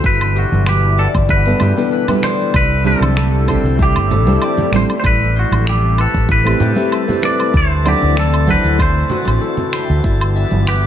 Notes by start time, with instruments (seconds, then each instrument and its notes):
Already playing: analog synth pad D3, harp F#4 A4 C5
0.04 fretless electric bass G1, analog synth pad B2 E3 G3 E4, harp E4, clean electric guitar B4, kick, shaker
0.21 low woodblock
0.35 clean electric guitar F#4, harp G4, shaker
0.52 fretless electric bass G1, high conga, shaker
0.66 clean electric guitar G4, harp B4, finger snap, low woodblock, shaker
0.98 clean electric guitar A4, harp D5, shaker
1.14 fretless electric bass G1, kick, muted conga, low woodblock, shaker
1.29 harp E4, clean electric guitar B4, kick, shaker
1.45 nylon-string guitar G3 B3 D4 E4 A4, muted conga
1.60 fretless electric bass G2, harp G4, low conga, low woodblock, shaker
1.76 nylon-string guitar G3 B3 D4 E4 A4, shaker
1.92 harp B4, shaker
2.08 nylon-string guitar G3 B3 D4 E4 A4, low conga, low woodblock
2.23 clean electric guitar C5, harp D5, finger snap, muted conga, shaker
2.41 shaker
2.54 fretless electric bass C2, analog synth pad D3 A3 C4, harp E4, clean electric guitar B4, kick, low woodblock, shaker
2.84 nylon-string guitar G3 C4 D4 E4 A4, harp G4, clean electric guitar A4, shaker
3.00 fretless electric bass C2, high conga, low woodblock, shaker
3.17 harp A4, finger snap, shaker
3.47 nylon-string guitar G3 C4 D4 E4 A4, harp C5, kick, low woodblock, shaker
3.63 fretless electric bass C2, muted conga, shaker
3.79 harp E4, clean electric guitar G4, kick, shaker
3.95 fretless electric bass G1, low woodblock
4.11 harp A4, low conga, shaker
4.26 fretless electric bass C2, nylon-string guitar G3 C4 D4 E4 A4, muted conga, shaker
4.42 harp D5, low woodblock, shaker
4.57 high conga, low conga
4.72 fretless electric bass A1, nylon-string guitar G3 C4 D4 E4 A4, harp C5, finger snap, shaker
4.76 clean electric guitar C5
4.90 low woodblock, shaker
5.00 clean electric guitar C5, synth texture A6
5.04 fretless electric bass A1, analog synth pad C3, harp E4, clean electric guitar B4, kick, low woodblock, shaker
5.36 clean electric guitar F#4, harp C5, shaker
5.51 fretless electric bass A1, high conga, low woodblock, shaker
5.67 clean electric guitar G4, harp A4, finger snap, shaker
5.98 clean electric guitar A4, harp B4, low woodblock, shaker
6.14 fretless electric bass A1, kick, muted conga, shaker
6.29 harp E4, clean electric guitar B4, kick, shaker
6.44 nylon-string guitar A3 C4 E4 G4 B4, muted conga, low woodblock
6.60 fretless electric bass A2, harp G4, low conga, shaker
6.75 nylon-string guitar A3 C4 E4 G4 B4, shaker
6.92 harp A4, low woodblock, shaker
7.08 nylon-string guitar A3 C4 E4 G4 B4, low conga
7.22 harp B4, clean electric guitar D5, finger snap, muted conga, shaker
7.40 low woodblock, shaker
7.54 fretless electric bass D2, analog synth pad D3 E3 C4, harp E4, clean electric guitar C5, kick, shaker
7.85 nylon-string guitar F#3 C4 D4 E4 A4, clean electric guitar G4, harp D5, low woodblock, shaker
8.02 fretless electric bass D2, high conga, shaker
8.16 harp A4, clean electric guitar A4, finger snap, shaker
8.34 low woodblock
8.47 nylon-string guitar F#3 C4 D4 E4 A4, clean electric guitar B4, harp C5, kick, shaker
8.64 fretless electric bass D2, muted conga, shaker
8.79 harp E4, clean electric guitar C5, kick, low woodblock, shaker
9.10 harp F#4, low conga, shaker
9.25 fretless electric bass A1, muted conga, low woodblock, shaker
9.41 harp A4, shaker
9.57 low conga
9.72 harp C5, finger snap, low woodblock, shaker
9.89 fretless electric bass D2, shaker
10.03 fretless electric bass G1, analog synth pad E3 G3 B3, harp E4, kick, shaker
10.21 low woodblock
10.36 harp E5, shaker
10.51 fretless electric bass G1, high conga, shaker
10.67 clean electric guitar G4, harp B4, finger snap, low woodblock, shaker